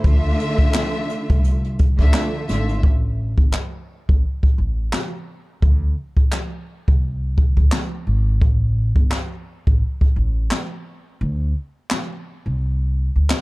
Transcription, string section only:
0.03 1.66 D3 loud
0.03 1.67 A3 loud
0.03 1.67 F4 loud
0.03 1.67 E5 loud
1.98 2.45 D3 loud
1.98 2.45 A3 medium
1.98 2.45 F4 medium
1.98 2.46 E5 loud
2.48 2.81 D3 medium
2.48 2.81 A3 medium
2.48 2.81 F4 medium
2.48 2.82 E5 medium

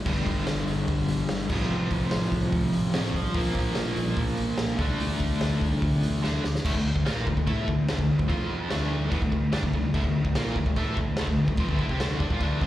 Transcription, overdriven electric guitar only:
0.06 1.49 G2 medium
0.06 1.50 D3 loud
0.06 1.50 G3 loud
1.50 2.92 F2 loud
1.50 2.94 C3 loud
1.50 2.96 F3 loud
2.94 3.13 F2 medium
2.94 3.14 C3 medium
2.94 3.35 F3 medium
3.35 4.78 A#2 medium
3.35 4.79 F3 loud
3.35 4.79 A#3 loud
4.78 6.22 D3 loud
4.78 6.22 A3 medium
4.78 6.23 D4 loud
6.23 6.43 D3 medium
6.23 6.43 A3 medium
6.23 6.44 D4 medium
6.66 6.75 D3 medium
6.66 6.75 A3 medium
6.76 6.92 D3 medium
6.76 6.92 A3 medium
6.95 7.06 D3 medium
6.95 7.05 A3 medium
7.05 7.26 A#3 medium
7.05 7.26 F4 loud
7.05 7.26 A#4 medium
7.27 7.36 D3 medium
7.27 7.37 A3 medium
7.37 7.47 D3 medium
7.37 7.46 A3 medium
7.47 7.67 A3 medium
7.47 7.67 E4 medium
7.47 7.67 A4 medium
7.68 7.84 D3 medium
7.68 7.84 A3 medium
7.89 7.97 D3 loud
7.89 7.98 A3 loud
7.98 8.15 D3 medium
7.98 8.15 A3 medium
8.19 8.28 D3 medium
8.19 8.28 A3 medium
8.29 8.70 F3 medium
8.29 8.70 C4 loud
8.29 8.70 F4 loud
8.70 9.11 D3 medium
8.70 9.11 A3 loud
8.70 9.11 D4 loud
9.11 9.21 E3 medium
9.11 9.22 B3 medium
9.22 9.31 D3 medium
9.22 9.31 A3 medium
9.32 9.49 D3 medium
9.32 9.49 A3 medium
9.52 9.62 G3 medium
9.52 9.63 D4 loud
9.63 9.73 D3 medium
9.63 9.73 A3 medium
9.74 9.90 D3 medium
9.74 9.91 A3 medium
9.94 10.04 D3 loud
9.94 10.04 A3 loud
10.05 10.21 D3 medium
10.05 10.21 A3 medium
10.26 10.36 D3 medium
10.26 10.35 A3 medium
10.35 10.56 A#3 medium
10.35 10.56 F4 medium
10.35 10.56 A#4 medium
10.57 10.66 D3 medium
10.57 10.66 A3 medium
10.67 10.77 D3 medium
10.67 10.75 A3 medium
10.77 10.97 A3 loud
10.77 10.97 E4 medium
10.77 10.97 A4 medium
10.98 11.14 D3 medium
10.98 11.14 A3 medium
11.19 11.28 D3 medium
11.19 11.28 A3 loud
11.29 11.45 D3 medium
11.29 11.46 A3 medium
11.49 11.59 D3 medium
11.49 11.59 A3 medium
11.59 11.68 F3 loud
11.59 11.69 C4 loud
11.69 11.79 D3 medium
11.69 11.78 A3 loud
11.80 11.89 A3 medium
11.80 11.90 E4 medium
11.90 12.00 C4 medium
11.90 12.00 G4 loud
12.00 12.20 D3 medium
12.00 12.20 A3 loud
12.00 12.20 D4 medium
12.21 12.31 G3 medium
12.21 12.31 D4 loud
12.32 12.41 A#3 medium
12.32 12.42 F4 loud
12.42 12.62 D3 loud
12.42 12.62 A3 medium
12.42 12.62 D4 loud
12.62 12.67 F3 medium
12.62 12.67 C4 medium
12.62 12.67 F4 loud

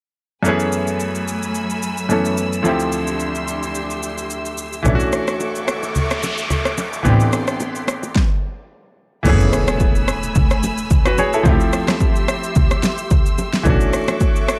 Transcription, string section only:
0.45 2.63 F#3 medium
0.45 2.63 A3 medium
0.45 2.63 G#5 medium
0.45 2.63 B5 medium
0.45 4.81 E6 medium
2.65 4.83 D4 medium
2.65 4.83 G4 medium
2.65 4.83 E5 medium
2.65 4.83 C6 medium
4.85 7.03 A4 medium
4.85 7.03 E5 medium
4.85 7.03 C#6 medium
4.85 8.12 D6 medium
7.06 8.15 A4 medium
7.06 8.15 G5 medium
7.06 8.15 C6 medium
9.26 11.44 A3 medium
9.26 11.44 G#5 medium
9.26 11.44 B5 medium
9.26 11.44 E6 medium
11.46 13.64 G4 medium
11.46 13.64 E5 medium
11.46 13.64 C6 medium
11.46 13.64 E6 medium
13.66 14.59 A4 medium
13.66 14.59 E5 medium
13.66 14.59 C#6 medium
13.66 14.59 D6 medium

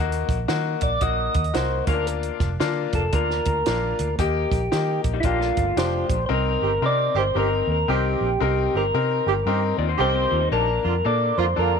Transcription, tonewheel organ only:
0.83 1.03 D5 medium
1.02 1.56 D#5 medium
1.55 1.85 C5 medium
1.89 2.07 A#4 medium
2.95 3.15 A4 medium
3.15 4.16 A#4 loud
4.22 5.02 G4 medium
5.20 5.25 E4 medium
5.26 6.07 F4 medium
5.79 6.25 C5 medium
6.26 6.31 C5 medium
6.33 6.86 A#4 loud
6.86 7.18 D5 loud
7.18 7.37 C5 medium
7.39 7.71 A#4 medium
7.72 7.90 A#4 medium
7.90 8.42 G4 medium
8.43 8.76 G4 medium
8.77 9.77 A#4 medium
10.01 10.49 C5 loud
10.53 11.07 A#4 loud
11.06 11.39 D5 loud
11.38 11.58 C5 medium
11.59 11.80 A#4 medium

